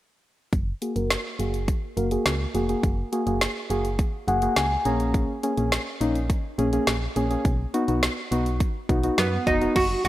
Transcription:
0.53 0.73 F#1 loud
0.53 kick loud
0.53 closed hi-hat medium
0.81 0.90 A#3 medium
0.81 0.90 F#4 medium
0.81 0.90 G#4 medium
0.81 closed hi-hat medium
0.96 1.16 F#1 medium
0.96 1.14 A#3 medium
0.96 1.14 F#4 medium
0.96 1.14 A#4 medium
0.96 closed hi-hat soft
1.10 snare loud
1.10 closed hi-hat medium
1.39 1.69 F#1 medium
1.39 1.57 A#3 medium
1.39 1.57 F#4 medium
1.39 1.57 G#4 medium
1.39 closed hi-hat medium
1.54 closed hi-hat soft
1.68 kick medium
1.68 closed hi-hat medium
1.97 2.17 F#1 medium
1.97 2.06 A#3 medium
1.97 2.06 F#4 medium
1.97 2.06 A#4 medium
1.97 closed hi-hat medium
2.11 2.29 A#3 medium
2.11 2.29 F#4 medium
2.11 2.29 G#4 medium
2.11 closed hi-hat medium
2.26 2.46 C#2 medium
2.26 snare loud
2.26 closed hi-hat medium
2.55 2.75 F1 medium
2.55 2.63 A#3 medium
2.55 2.63 F#4 medium
2.55 2.63 G#4 medium
2.55 closed hi-hat medium
2.69 2.87 A#3 medium
2.69 2.87 F#4 medium
2.69 2.87 G#4 medium
2.69 closed hi-hat soft
2.83 3.04 F#1 loud
2.83 kick loud
2.83 closed hi-hat medium
3.12 3.21 A#3 medium
3.12 3.21 F#4 medium
3.12 3.21 G#4 medium
3.12 closed hi-hat medium
3.27 3.47 F#1 medium
3.27 3.44 A#3 medium
3.27 3.44 F#4 medium
3.27 3.44 G#4 medium
3.27 closed hi-hat soft
3.41 snare loud
3.41 closed hi-hat medium
3.70 4.00 F#1 medium
3.70 3.88 A#3 medium
3.70 3.88 F#4 medium
3.70 3.88 G#4 medium
3.70 closed hi-hat medium
3.85 closed hi-hat soft
3.99 kick medium
3.99 closed hi-hat medium
4.28 4.48 F#1 loud
4.28 4.37 A#3 medium
4.28 4.37 F#4 medium
4.28 4.37 G#4 medium
4.28 4.55 F#5 medium
4.28 closed hi-hat medium
4.42 4.60 A#3 medium
4.42 4.60 F#4 medium
4.42 4.60 G#4 medium
4.42 closed hi-hat medium
4.56 4.77 C#2 medium
4.56 4.83 G#5 medium
4.56 snare loud
4.56 closed hi-hat medium
4.85 5.26 A#1 medium
4.85 5.32 A#3 medium
4.85 5.32 C#4 medium
4.85 5.32 G#4 medium
4.85 5.12 A#5 medium
4.85 closed hi-hat medium
5.00 closed hi-hat soft
5.14 kick loud
5.14 closed hi-hat medium
5.43 5.52 A#3 medium
5.43 5.52 C#4 medium
5.43 5.52 G#4 medium
5.43 closed hi-hat medium
5.57 5.78 A#1 loud
5.57 5.75 A#3 medium
5.57 5.75 C#4 medium
5.57 5.75 G#4 medium
5.57 closed hi-hat soft
5.72 snare loud
5.72 closed hi-hat medium
6.01 6.31 A#1 medium
6.01 6.19 A#3 medium
6.01 6.19 C#4 medium
6.01 6.19 D#4 medium
6.01 closed hi-hat medium
6.15 closed hi-hat soft
6.30 kick medium
6.30 closed hi-hat medium
6.58 6.79 A#1 loud
6.58 6.67 A#3 medium
6.58 6.67 C#4 medium
6.58 6.67 G#4 medium
6.58 closed hi-hat medium
6.73 6.91 A#3 medium
6.73 6.91 C#4 medium
6.73 6.91 G#4 medium
6.73 closed hi-hat medium
6.87 7.07 A#1 medium
6.87 snare loud
6.87 closed hi-hat medium
7.16 7.36 A#1 medium
7.16 7.25 A#3 medium
7.16 7.25 C#4 medium
7.16 7.25 G#4 medium
7.16 closed hi-hat medium
7.31 7.45 A#3 medium
7.31 7.45 C#4 medium
7.31 7.45 G#4 medium
7.31 closed hi-hat soft
7.45 7.65 B1 loud
7.45 kick loud
7.45 closed hi-hat medium
7.74 7.83 B3 medium
7.74 7.83 D#4 medium
7.74 7.83 F#4 medium
7.74 closed hi-hat medium
7.88 8.08 B1 medium
7.88 8.06 B3 medium
7.88 8.06 D#4 medium
7.88 8.06 F#4 medium
7.88 closed hi-hat medium
8.03 snare loud
8.03 closed hi-hat medium
8.31 8.62 B1 loud
8.31 8.49 B3 medium
8.31 8.49 D#4 medium
8.31 8.49 F#4 medium
8.31 closed hi-hat medium
8.46 closed hi-hat soft
8.60 kick medium
8.60 closed hi-hat medium
8.89 9.09 B1 loud
8.89 8.98 B3 medium
8.89 8.98 D#4 medium
8.89 8.98 F#4 medium
8.89 kick medium
8.89 closed hi-hat medium
9.03 9.21 B3 medium
9.03 9.21 D#4 medium
9.03 9.21 F#4 medium
9.03 closed hi-hat medium
9.18 9.38 F#2 loud
9.18 9.45 B3 medium
9.18 snare loud
9.18 closed hi-hat medium
9.47 9.67 F1 medium
9.47 9.56 B3 medium
9.47 9.56 D#4 medium
9.47 9.75 D#4 medium
9.47 9.56 F#4 medium
9.47 kick medium
9.47 closed hi-hat medium
9.61 9.76 B3 medium
9.61 9.76 D#4 medium
9.61 9.76 F#4 medium
9.61 closed hi-hat soft
9.76 9.96 F#1 medium
9.76 10.03 F#4 loud
9.76 kick loud
9.76 closed hi-hat medium
9.76 crash medium
10.05 10.08 F#1 medium
10.05 10.08 G#3 medium
10.05 10.08 A#3 medium
10.05 10.08 F#4 medium
10.05 closed hi-hat medium

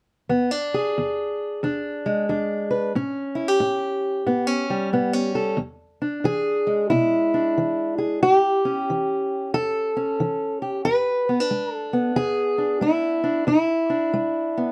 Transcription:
0.29 0.91 E2 medium
0.29 0.51 B3 medium
0.51 1.62 D4 soft
0.74 2.70 G#4 medium
0.98 1.58 E2 medium
1.63 2.24 E2 medium
1.63 2.28 D4 medium
2.06 2.92 G#3 soft
2.29 2.90 E2 medium
2.29 2.92 D4 soft
2.71 2.92 B4 medium
2.95 3.56 A2 medium
2.95 4.26 C#4 medium
3.35 3.48 E4 medium
3.48 5.34 G4 soft
3.60 4.22 A2 medium
4.27 4.88 A2 medium
4.27 4.47 B3 medium
4.47 4.92 C#4 soft
4.70 5.60 G3 medium
4.93 5.54 A2 medium
4.93 5.13 B3 medium
5.13 5.59 C#4 soft
5.35 5.56 A4 medium
5.57 6.19 E2 medium
6.02 7.33 D4 medium
6.24 6.86 E3 medium
6.24 6.90 G#4 loud
6.67 8.20 G#3 soft
6.90 7.52 B2 medium
6.90 7.98 E4 medium
7.34 8.20 D4 soft
7.58 8.18 E3 medium
7.98 8.20 G#4 soft
8.23 8.84 A2 medium
8.23 9.54 G4 loud
8.65 9.95 C#4 soft
8.90 9.50 E3 medium
9.54 10.15 E2 medium
9.54 10.61 A4 loud
9.97 10.83 C#4 soft
10.20 10.81 E3 medium
10.62 10.83 G4 soft
10.85 11.46 E2 medium
10.85 11.74 B4 loud
11.29 11.40 B3 medium
11.40 12.57 D4 soft
11.51 12.12 G#3 medium
11.74 12.16 A4 loud
11.93 13.45 B3 soft
12.16 12.77 E2 medium
12.16 12.82 G#4 loud
12.58 13.22 D4 soft
12.81 13.42 G#3 medium
12.81 13.46 E4 medium
13.24 13.45 D4 medium
13.47 14.08 E2 medium
13.47 14.72 E4 medium
13.90 14.72 D4 medium
14.14 14.72 G#3 medium
14.58 14.72 B3 soft

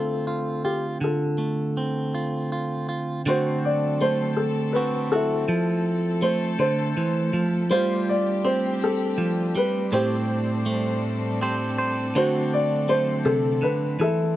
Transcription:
0.00 1.01 D3 medium
0.00 1.38 A3 soft
0.00 1.76 C4 soft
0.00 0.26 F4 soft
0.00 0.67 A4 medium
0.27 0.63 F4 soft
0.65 0.97 F4 soft
0.65 1.03 G4 medium
1.01 3.25 D3 medium
1.01 2.85 F4 soft
1.01 2.85 A4 medium
1.38 3.20 A3 soft
1.77 3.27 C4 soft
2.15 2.51 F4 soft
2.52 2.88 F4 soft
2.89 3.21 F4 soft
3.25 5.48 D3 medium
3.25 5.46 F#3 medium
3.25 4.01 A3 medium
3.25 7.66 C4 medium
3.25 4.75 C4 medium
3.25 5.47 D4 medium
3.25 4.75 F#4 medium
3.25 4.35 F#4 medium
3.25 5.46 A4 medium
3.25 3.65 C5 medium
3.65 4.02 D5 medium
4.01 5.44 A3 medium
4.01 4.39 C5 medium
4.37 4.75 A4 medium
4.73 8.26 C4 soft
4.73 5.11 F#4 soft
4.73 5.12 B4 medium
5.12 6.20 E4 medium
5.12 5.44 F#4 medium
5.12 6.26 A4 medium
5.48 6.59 F3 medium
5.48 9.89 A3 medium
5.48 7.68 A4 medium
6.22 7.66 A3 medium
6.22 6.58 C5 medium
6.59 6.96 D3 medium
6.59 7.39 C5 medium
6.97 7.33 E3 soft
7.33 7.70 F3 medium
7.71 9.54 G3 medium
7.71 14.36 C4 medium
7.71 14.34 D4 medium
7.71 9.89 F4 medium
7.71 8.78 F4 medium
7.71 9.91 G4 medium
7.71 8.05 C5 medium
8.09 8.46 D5 medium
8.45 9.93 C4 medium
8.45 8.82 C5 medium
8.84 9.52 A4 medium
9.18 9.55 F3 medium
9.55 9.92 G3 medium
9.55 9.91 B4 medium
9.92 12.14 A2 medium
9.92 12.13 G3 medium
9.92 10.66 A3 medium
9.92 11.41 C4 soft
9.92 11.41 G4 medium
9.92 11.01 G4 soft
9.92 14.33 A4 medium
9.92 11.00 C5 medium
9.92 12.13 C5 medium
10.66 12.16 A3 medium
11.41 12.16 C4 soft
11.41 12.11 G4 soft
11.41 11.78 C5 medium
11.78 12.18 C5 medium
12.15 13.61 D3 medium
12.15 14.35 F#3 medium
12.15 12.88 A3 medium
12.15 14.36 C4 medium
12.15 13.23 F#4 medium
12.15 14.33 F#4 soft
12.15 12.50 C5 medium
12.53 12.91 D5 medium
12.89 14.32 A3 medium
12.89 13.27 C5 medium
13.25 13.62 C3 medium
13.25 13.64 A4 medium
13.62 13.99 D3 soft
13.62 14.01 B4 medium
14.00 14.36 E3 medium
14.00 14.36 E4 medium
14.00 14.36 A4 medium

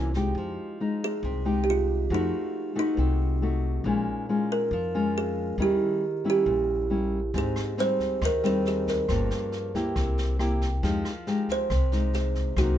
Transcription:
0.00 0.32 C2 loud
0.00 0.34 C3 medium
0.00 0.11 E3 medium
0.00 0.11 A#3 medium
0.00 0.11 C#4 medium
0.14 0.77 G#3 medium
0.14 0.77 D#4 medium
0.14 0.77 G4 medium
0.14 kick soft
0.14 snare soft
0.35 0.56 F2 medium
0.35 1.22 F3 soft
0.80 1.42 G#3 soft
0.80 1.42 D#4 medium
1.04 1.44 G#4 medium
1.23 2.06 C2 loud
1.23 2.09 C3 medium
1.45 2.07 G#3 medium
1.45 2.07 D#4 medium
1.45 2.07 G4 medium
1.64 1.69 G4 medium
1.70 2.09 F4 medium
2.10 2.31 F2 loud
2.10 2.96 F3 medium
2.10 2.73 A3 soft
2.10 2.73 D#4 soft
2.10 2.73 F#4 medium
2.14 2.74 D#4 medium
2.75 3.38 A3 medium
2.75 3.38 D#4 medium
2.75 3.61 D#4 medium
2.75 3.38 F#4 medium
2.97 3.81 C2 loud
2.97 3.83 C3 medium
3.42 3.82 A3 medium
3.42 3.82 D#4 medium
3.42 3.82 F#4 medium
3.84 4.05 A#1 loud
3.84 4.70 A#2 medium
3.84 4.25 G#3 medium
3.84 4.26 C#4 medium
3.84 4.26 F4 medium
4.29 4.72 G#3 medium
4.29 4.73 C#4 soft
4.29 4.73 F4 medium
4.52 4.92 A#4 medium
4.71 5.55 F2 loud
4.71 5.58 F3 medium
4.94 5.56 G#3 medium
4.94 5.57 C#4 medium
4.94 5.57 F4 medium
5.18 5.62 G#4 medium
5.58 5.79 D#2 loud
5.58 6.45 D#3 soft
5.58 6.03 G3 medium
5.58 6.03 C#4 soft
5.58 6.03 E4 medium
5.62 6.28 G4 medium
6.24 6.87 G3 medium
6.24 6.87 C#4 medium
6.24 6.87 E4 medium
6.30 7.11 G4 medium
6.46 7.30 A#1 loud
6.46 7.32 A#2 soft
6.90 7.19 G3 soft
6.90 7.19 C#4 medium
6.90 7.19 E4 medium
7.34 7.55 G#1 loud
7.34 8.19 G#2 medium
7.34 7.75 C4 medium
7.34 7.75 D#4 medium
7.34 kick medium
7.34 snare soft
7.38 7.81 G#4 medium
7.56 cross-stick medium
7.56 snare soft
7.77 8.21 G3 soft
7.77 8.21 C4 medium
7.77 8.21 D#4 medium
7.77 8.24 C5 loud
7.77 snare soft
8.00 kick soft
8.00 snare soft
8.21 9.05 D#2 loud
8.21 9.07 D#3 medium
8.21 8.46 A#4 medium
8.21 kick medium
8.21 cross-stick medium
8.21 snare soft
8.43 9.05 G3 medium
8.43 9.06 C4 medium
8.43 9.06 D#4 medium
8.43 8.67 G#4 medium
8.43 snare soft
8.65 8.89 G#4 medium
8.65 snare soft
8.87 9.72 A#4 medium
8.87 kick soft
8.87 snare soft
9.09 9.29 G1 loud
9.09 9.94 G2 medium
9.09 9.71 F3 medium
9.09 9.71 A#3 medium
9.09 9.71 C#4 medium
9.09 kick medium
9.09 cross-stick medium
9.09 snare soft
9.30 snare soft
9.52 snare soft
9.74 10.36 A#3 medium
9.74 10.37 E4 medium
9.74 10.37 G4 medium
9.74 kick soft
9.74 snare soft
9.96 10.79 C2 loud
9.96 10.81 C3 medium
9.96 kick medium
9.96 cross-stick medium
9.96 snare soft
10.18 snare soft
10.39 10.67 A#3 medium
10.39 10.68 E4 medium
10.39 10.68 G4 medium
10.39 cross-stick medium
10.39 snare soft
10.61 kick soft
10.61 snare soft
10.83 11.03 F2 loud
10.83 11.68 F3 medium
10.83 11.11 G#3 medium
10.83 11.11 D#4 medium
10.83 11.12 G4 medium
10.83 kick medium
10.83 snare soft
11.05 cross-stick medium
11.05 snare soft
11.27 11.70 G#3 medium
11.27 11.70 D#4 medium
11.27 11.70 G4 medium
11.27 snare soft
11.48 12.17 C5 loud
11.48 kick soft
11.48 snare soft
11.70 12.53 C2 loud
11.70 12.56 C3 medium
11.70 kick medium
11.70 cross-stick medium
11.70 snare soft
11.92 12.54 G#3 medium
11.92 12.54 D#4 medium
11.92 snare soft
12.14 12.59 G#4 medium
12.14 snare soft
12.35 kick soft
12.35 snare soft
12.56 12.77 C2 loud
12.56 12.78 C3 medium
12.56 12.78 F#3 medium
12.56 12.78 A#3 medium
12.56 12.78 D#4 medium
12.56 12.78 F#4 medium
12.56 kick medium
12.56 cross-stick medium
12.56 snare soft

